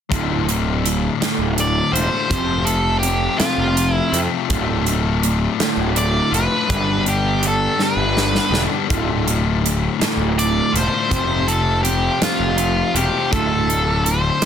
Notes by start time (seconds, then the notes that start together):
0.09 D1 D2 A2 D3 A3 F4, kick, closed hi-hat
0.48 D2 A2, closed hi-hat
0.84 D2 A2, closed hi-hat
1.20 D2 A2 D3, snare, closed hi-hat
1.39 D1
1.58 D5, closed hi-hat
1.92 E1 D2 A2 D3 A3 F4 C5, closed hi-hat
2.29 F1 F2 C3 F3 A3 C4 F4, kick, closed hi-hat
2.65 F2 C3 A4, closed hi-hat
2.99 G4
3.03 F2 C3, closed hi-hat
3.38 F2 C3 F3 F4, snare, closed hi-hat
3.58 F1
3.77 closed hi-hat
3.92 E4
4.12 F2 C3 F3 A3 C4 F4, closed hi-hat
4.48 D1 D2 A2 D3 A3 F4, kick, closed hi-hat
4.86 D2 A2, closed hi-hat
5.23 D2 A2, closed hi-hat
5.60 D2 A2 D3, snare, closed hi-hat
5.77 D1
5.96 D5, closed hi-hat
6.31 F1 D2 A2 D3 A3 F4 B4, closed hi-hat
6.67 G1 G2 D3 G3 B3 D4 G4, kick, closed hi-hat
6.71 G3
7.06 G2 D3 G4, closed hi-hat
7.43 G2 D3, closed hi-hat
7.48 A4
7.79 G2 D3 G3 B4, snare
7.96 G1
8.17 snare
8.35 snare
8.50 E1 G2 D3 G3 B3 D4 G4, snare
8.54 G2
8.87 D1 D2 A2 D3 A3 F4, kick, closed hi-hat
9.27 D2 A2, closed hi-hat
9.62 D2 A2, closed hi-hat
9.99 D2 A2 D3, snare, closed hi-hat
10.17 D1
10.39 D5, closed hi-hat
10.72 E1 D2 A2 D3 A3 F4, closed hi-hat
10.77 C5
11.09 F1 F2 C3 F3 A3 C4, kick, closed hi-hat
11.13 F4
11.47 F2 C3 A4, closed hi-hat
11.83 F2 C3 G4, closed hi-hat
12.21 F2 C3 F3 F4, snare, closed hi-hat
12.40 F1
12.58 closed hi-hat
12.95 E1 F2 C3 F3 A3 C4 F4 G4, closed hi-hat
13.31 D1 D2 A2 D3 A3 A4, kick, closed hi-hat
13.35 F4
13.69 D2 A2, closed hi-hat
14.05 D2 A2 C5, closed hi-hat
14.42 D2 A2, snare, closed hi-hat